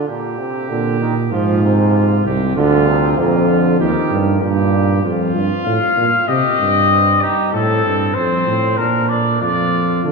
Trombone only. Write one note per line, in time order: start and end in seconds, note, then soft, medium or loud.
0.08 0.38 A#2 medium
0.39 0.71 C3 medium
0.69 1.00 D3 medium
1.01 1.15 D#3 medium
1.32 1.61 F3 medium
1.62 2.26 C3 medium
2.55 2.89 D3 medium
2.87 3.19 C3 medium
3.18 3.48 A#2 medium
3.48 3.79 D3 medium
3.80 4.43 D#3 medium
4.42 5.04 A#2 medium
10.04 10.12 A3 medium